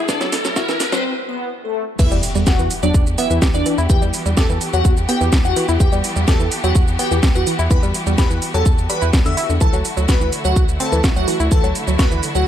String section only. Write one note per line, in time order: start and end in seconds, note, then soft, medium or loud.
0.00 1.00 D3 medium
0.00 1.00 A3 medium
0.00 1.00 E4 medium
0.00 1.00 F#4 medium
1.99 9.57 E3 medium
1.99 9.57 B3 medium
1.99 12.47 F#4 medium
1.99 9.57 G4 medium
9.61 12.47 D3 medium
9.61 12.47 A3 medium
9.61 12.47 E4 medium